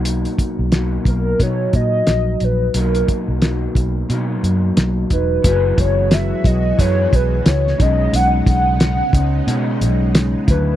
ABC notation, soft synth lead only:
X:1
M:4/4
L:1/8
Q:"Swing 16ths" 1/4=89
K:B
V:1 name="Soft synth lead"
z3 A c d2 B | A2 z4 z B- | B c e d c B c d | f f4 z2 B |]